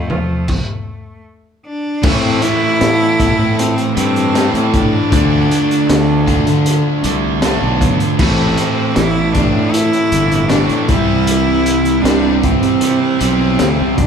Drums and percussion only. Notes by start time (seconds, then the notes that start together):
0.10 floor tom, mid tom
0.48 kick, crash
2.03 kick, crash
2.42 closed hi-hat
2.81 snare, closed hi-hat
3.20 kick, snare, closed hi-hat
3.59 closed hi-hat
3.78 closed hi-hat
3.97 closed hi-hat
4.16 closed hi-hat
4.35 snare, closed hi-hat
4.55 closed hi-hat
4.74 kick, closed hi-hat
5.12 kick, closed hi-hat
5.51 closed hi-hat
5.71 closed hi-hat
5.89 snare, closed hi-hat
6.28 kick, closed hi-hat
6.47 closed hi-hat
6.66 closed hi-hat
7.04 closed hi-hat
7.42 snare, closed hi-hat
7.81 kick, closed hi-hat
8.00 closed hi-hat
8.19 kick, crash
8.57 closed hi-hat
8.96 snare, closed hi-hat
9.35 kick, snare, closed hi-hat
9.74 closed hi-hat
9.93 closed hi-hat
10.12 closed hi-hat
10.31 closed hi-hat
10.50 snare, closed hi-hat
10.69 closed hi-hat
10.89 kick, closed hi-hat
11.27 closed hi-hat
11.66 closed hi-hat
11.85 closed hi-hat
12.05 snare, closed hi-hat
12.43 kick, closed hi-hat
12.63 closed hi-hat
12.81 closed hi-hat
13.21 closed hi-hat
13.59 snare, closed hi-hat
13.98 kick, closed hi-hat